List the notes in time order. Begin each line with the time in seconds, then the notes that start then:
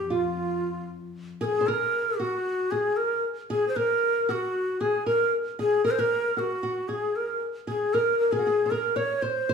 Already playing: F2 G4
0.10 F4
1.41 G#4 A#4
1.61 C5
1.67 A#4
2.19 F#4
2.71 G#4
2.97 A#4
3.50 G#4
3.68 C5
3.76 A#4
4.29 F#4
4.81 G#4
5.06 A#4
5.59 G#4
5.84 A#4
5.91 C5
5.99 A#4
6.37 F#4
6.63 F#4
6.88 G#4
7.16 A#4
7.67 G#4
7.94 A#4
8.19 A#4
8.32 G#4
8.39 F#4
8.47 G#4
8.66 C5
8.71 A#4
8.96 C#5
9.22 C5
9.49 C5